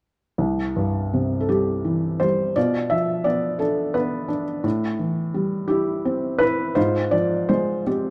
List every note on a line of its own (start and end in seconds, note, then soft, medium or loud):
0.38 2.52 C2 soft
0.76 2.17 G2 soft
1.14 2.52 C3 soft
1.40 1.48 A4 soft
1.49 2.19 G3 soft
1.49 2.23 G4 medium
1.85 2.54 E3 soft
2.20 2.55 G3 soft
2.20 2.57 C5 medium
2.56 4.60 B2 medium
2.56 3.57 F4 soft
2.56 2.92 D5 medium
2.90 4.26 F3 soft
2.90 3.26 E5 medium
3.24 3.93 B3 soft
3.24 3.61 D5 medium
3.59 4.27 D4 soft
3.59 3.95 A4 medium
3.94 4.62 B3 soft
3.94 4.43 B4 medium
4.28 4.63 D4 soft
4.64 6.72 A2 medium
4.99 6.37 E3 soft
5.34 6.73 G3 soft
5.68 6.39 E4 soft
5.68 6.42 G4 medium
6.05 6.75 C4 soft
6.38 6.75 E4 soft
6.38 6.73 B4 medium
6.75 8.10 G#2 medium
6.75 7.83 F4 medium
6.75 7.13 C5 medium
7.11 8.10 F3 soft
7.11 7.50 D5 medium
7.49 8.10 G#3 soft
7.49 7.88 C5 medium
7.87 8.10 C4 soft
7.87 8.10 G4 medium